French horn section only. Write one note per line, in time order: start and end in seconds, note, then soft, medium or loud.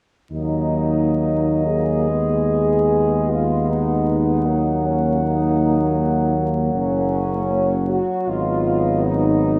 0.32 1.62 D#4 medium
1.65 3.30 G#4 medium
3.29 3.69 F4 medium
3.69 4.84 D#4 soft
4.85 5.23 C#4 soft
5.23 6.34 D#4 medium
6.75 7.85 C#4 medium
7.89 8.26 F#4 medium
8.28 9.04 F4 medium
9.04 9.59 D#4 medium